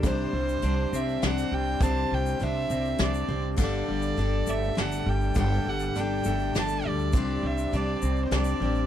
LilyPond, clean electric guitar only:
\new Staff \with { instrumentName = "Clean electric guitar" } { \clef bass \time 3/4 \key c \lydian \tempo 4 = 101 c8 g8 d'8 c'8 d'8 g8 | c8 g8 d'8 c'8 d'8 g8 | g8 g8 d'8 a8 d'8 g8 | g8 g8 d'8 a8 d'8 g8 |
c8 g8 d'8 c'8 d'8 g8 | }